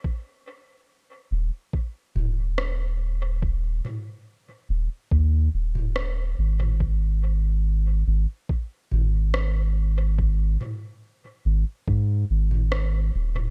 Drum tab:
SD |------------r---|------------r---|------------r---|------------r---|
T2 |----------o-----|--o--------o---o|----------o-----|--o--------o---o|
BD |o-------o-------|o-------o-------|o-------o-------|o-------o-------|